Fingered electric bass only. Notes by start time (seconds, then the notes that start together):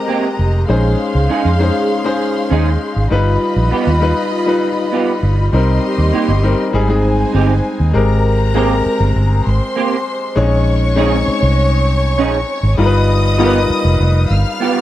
0.39 F1
0.69 A#1
1.15 C#2
1.45 F2
2.51 D#2
2.96 G#1
3.11 G1
3.56 A#1
3.87 D#2
5.23 G1
5.53 C2
5.98 D#2
6.28 G1
6.74 G#1
7.34 G1
7.80 D#2
7.95 G#1
8.86 muted fingered electric bass stroke
9.00 G1
9.16 G1
9.47 G#1
10.37 A#1
11.28 muted fingered electric bass stroke
11.43 C2
12.18 A#1
12.63 G#1
12.78 G1
13.70 muted fingered electric bass stroke
13.85 F1
14.00 F1
14.30 G1